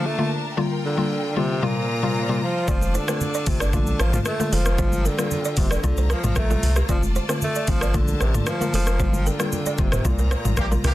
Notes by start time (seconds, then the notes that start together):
Already playing: D3 A3 A#3 D4 F4 A#4 A5
0.06 A3
0.18 D3 A3 A#3 F4
0.57 D3 G3 A#3 F4 G5
0.85 D3
0.97 D3 G3 A#3 F4
1.36 C3 D3 G3 A#3 F4
1.62 A#2 C3 G3 A#3 F4 C5 A#5
2.03 C3 G3 A#3 F4
2.29 C3 G3 A#3 F4
2.43 F3
2.68 F1 D3 F3 A3 C4 F4 D5 A5, kick, shaker
2.81 high conga, shaker
2.94 D3 C5, high conga, shaker
3.08 D3 A3 C4 F4 C5, cross-stick, shaker
3.21 low conga, shaker
3.34 D5, shaker
3.46 G1 C3 D3 A3 C4 F4, kick, open hi-hat, low conga, shaker
3.60 D3 D5, cross-stick, shaker
3.73 A#1 D3 A3 A#3 D4 F4 A#4, kick, shaker
3.87 high conga, shaker
4.00 A1 F3 C5, cross-stick, shaker
4.13 D3 F3 A3 A#3 F4, mid tom, high conga, shaker
4.25 A3, cross-stick, shaker
4.39 D3 A3 A#3 F4 A#4, high conga, shaker
4.52 F1 F3 A4, open hi-hat, high conga, low conga, shaker
4.66 cross-stick, shaker
4.78 G1 D3 G3 A#3 F4 C5 G5, kick, shaker
4.92 high conga, shaker
5.05 D3 A#4, high conga, shaker
5.18 D3 G3 A#3 F4, cross-stick, shaker
5.31 low conga, shaker
5.45 D5, shaker
5.57 F1 C3 D3 G3 A#3 F4, kick, open hi-hat, low conga, shaker
5.71 D3 D5, cross-stick, shaker
5.83 C2 C3 D3 G3 A#3 F4 C5 A#5, kick, shaker
5.97 C5, high conga, shaker
6.10 F3 A#4, cross-stick, shaker
6.23 A1 C3 F3 G3 A#3 F4, mid tom, high conga, shaker
6.36 A#1 A3, kick, cross-stick, shaker
6.50 C3 G3 A#3 F4 A4, high conga, shaker
6.63 C2, open hi-hat, high conga, low conga, shaker
6.76 G4, cross-stick, shaker
6.89 F1 D3 F3 A3 C4 F4 D5 A5, kick, shaker
7.02 high conga, shaker
7.15 C5, high conga, shaker
7.29 D3 A3 C4 F4 C5, cross-stick, shaker
7.42 A3, low conga, shaker
7.55 D5, shaker
7.67 G1 D3 F3 A3 C4 F4, kick, open hi-hat, low conga, shaker
7.81 D5, cross-stick, shaker
7.94 A#1 D3 A3 A#3 D4 F4 A#4, kick, shaker
8.08 high conga, shaker
8.21 A1 C3 C5, cross-stick, shaker
8.34 D3 A3 A#3 F4, mid tom, high conga, shaker
8.46 F3, cross-stick, shaker
8.60 D3 A3 A#3 F4 A#4, high conga, shaker
8.73 F1 F3 A4, open hi-hat, high conga, low conga, shaker
8.87 cross-stick, shaker
8.99 G1 D3 G3 A#3 F4 C5 G5, kick, shaker
9.13 high conga, shaker
9.26 D3 A#4, high conga, shaker
9.39 D3 G3 A#3 F4, cross-stick, shaker
9.52 low conga, shaker
9.66 D5, high conga, shaker
9.78 F1 C3 D3 G3 A#3 F4, kick, low conga, shaker
9.92 C5, cross-stick, mid tom, shaker
10.05 C2 A#2 C3 G3 A#3 F4 C5 A#5, kick, shaker
10.19 A#4, high conga, shaker
10.31 C5, cross-stick, shaker
10.45 A1 C3 G3 A#3 F4, mid tom, high conga, shaker
10.57 A#1 C3 A#3 G4, kick, cross-stick, shaker
10.71 C3 G3 A#3 F4 A#4, high conga, shaker
10.84 C2 C3 A#3 G4, cross-stick, open hi-hat, high conga, low conga, shaker